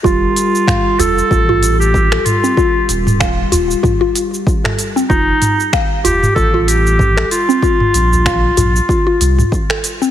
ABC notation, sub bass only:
X:1
M:4/4
L:1/8
Q:"Swing 16ths" 1/4=95
K:Fmix
V:1 name="Sub bass" clef=bass
F,,, z2 F,,, A,,,3 z | z E,,,2 E,,, z4 | F,,, z2 F,,, A,,,3 z | z B,,,2 B,,, z C,, z2 |]